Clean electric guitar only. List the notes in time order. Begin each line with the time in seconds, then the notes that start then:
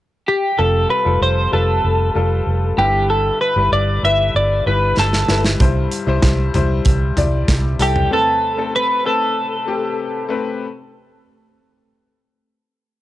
0.28 G4
0.59 A4
0.90 B4
1.23 C5
1.53 A4
2.78 G4
3.10 A4
3.41 B4
3.73 D5
4.05 E5
4.36 D5
4.67 B4
4.99 A4
7.82 G4
8.13 A4
8.76 B4
9.06 A4